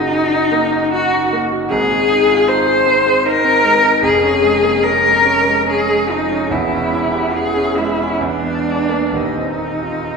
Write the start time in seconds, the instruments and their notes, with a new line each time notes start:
Already playing: grand piano F#1 F#2 D#4 F#4 G#4, cello D#4
0.13 grand piano F#4
0.32 grand piano D#4
0.52 grand piano A#3
0.72 grand piano D#4
0.92 grand piano F#4, cello F#4
1.14 grand piano D#4
1.33 grand piano A#3
1.53 grand piano F#4
1.69 grand piano G#1 G#2, cello G#4
1.92 grand piano G#4
2.10 grand piano D#4
2.30 grand piano F4
2.47 grand piano D#4, cello C5
2.67 grand piano G#4
2.87 grand piano C4
3.06 grand piano G#4
3.25 grand piano D#4, cello A#4
3.45 grand piano C4
3.64 grand piano G#3
3.84 grand piano D#4
4.02 grand piano F1 F2, cello G#4
4.23 grand piano C#4
4.42 grand piano G#3
4.63 grand piano A#3
4.83 grand piano C#4, cello A#4
5.04 grand piano G#3
5.25 grand piano C#4
5.46 grand piano G#3
5.67 grand piano C#4, cello G#4
5.89 grand piano G#3
6.09 grand piano F3, cello D#4
6.31 grand piano C#4
6.50 grand piano E1 E2, cello E4
6.72 grand piano C#4
6.92 grand piano E4
7.14 grand piano G4
7.35 grand piano E4, cello G#4
7.56 grand piano C#4
7.76 grand piano G#3, cello E4
7.99 grand piano C#4
8.21 grand piano E2
8.25 cello D4
8.44 grand piano B3
8.67 grand piano G#3
8.89 grand piano A#3
9.12 grand piano D#1 D#2
9.16 cello D#4
9.38 grand piano C4
9.59 grand piano D#4
9.83 grand piano F4
10.05 grand piano D#4